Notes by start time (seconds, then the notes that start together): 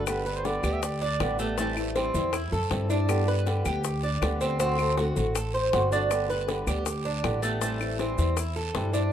Already playing: G1
0.06 D3 G3 B3 G4 B4, high bongo, long guiro, claves, maracas
0.25 G3 B3 G4 B4, maracas
0.36 C5
0.44 D3 G3 B3 G4 D5, high bongo, short guiro, maracas
0.63 D2 G3 B3 G4, short guiro, claves, maracas
0.73 E5
0.82 D5, muted steel-string acoustic guitar stroke, high bongo, long guiro, maracas
1.01 D4, maracas
1.20 A1 D3 G3 B3 G4, high bongo, low bongo, short guiro, claves, maracas
1.39 G3 A3 B3 G4, short guiro, maracas
1.58 E3 G3 A3 C4 E4, high bongo, long guiro, maracas
1.76 G3 C4 E4, claves, maracas
1.95 E3 G3 C4 E4, high bongo, short guiro, maracas
2.14 E2 G3 C4 E4, high bongo, short guiro, maracas
2.33 E4, muted steel-string acoustic guitar stroke, high bongo, long guiro, claves, maracas
2.52 F#2 A4, high bongo, maracas
2.70 G2 E3 G3 C4 E4, high bongo, low bongo, short guiro, maracas
2.89 G3 C4 D4 E4, high bongo, short guiro, maracas
3.08 D3 G3 B3 G4, high bongo, long guiro, claves, maracas
3.27 G3 B3 G4 B4, maracas
3.45 D3 G3 B3 G4, high bongo, short guiro, maracas
3.64 D2 G3 B3 G4, short guiro, claves, maracas
3.84 muted steel-string acoustic guitar stroke, high bongo, long guiro, maracas
4.03 D4, maracas
4.21 D2 D3 G3 B3 G4, high bongo, low bongo, short guiro, claves, maracas
4.41 G3 B3 C4 G4, short guiro, maracas
4.59 D3 A3 C4 F#4, high bongo, long guiro, maracas
4.78 A3 C4 F#4, claves, maracas
4.97 D3 A3 C4 F#4, high bongo, short guiro, maracas
5.16 A1 A3 C4 F#4, high bongo, short guiro, maracas
5.35 A4, muted steel-string acoustic guitar stroke, high bongo, long guiro, claves, maracas
5.54 C5, high bongo, maracas
5.72 G1 D3 A3 C4 F#4, high bongo, low bongo, short guiro, maracas
5.91 A3 C4 D4 F#4, high bongo, short guiro, maracas
6.11 D3 G3 B3 G4, high bongo, long guiro, claves, maracas
6.29 G3 B3 G4 B4, maracas
6.48 D3 G3 B3 G4, high bongo, short guiro, maracas
6.67 D2 G3 B3 G4, short guiro, claves, maracas
6.86 muted steel-string acoustic guitar stroke, high bongo, long guiro, maracas
7.05 D4, maracas
7.23 A1 D3 G3 B3 G4, high bongo, low bongo, short guiro, claves, maracas
7.42 G3 A3 B3 G4, short guiro, maracas
7.61 E3 G3 A3 C4 E4, high bongo, long guiro, maracas
7.80 G3 C4 E4, claves, maracas
7.99 E3 G3 C4 E4, high bongo, short guiro, maracas
8.18 E2 G3 C4 E4, high bongo, short guiro, maracas
8.37 E4, muted steel-string acoustic guitar stroke, high bongo, long guiro, claves, maracas
8.56 A4, high bongo, maracas
8.74 G2 E3 G3 C4 E4, high bongo, low bongo, short guiro, maracas
8.92 G3 C4 D4 E4, high bongo, short guiro, maracas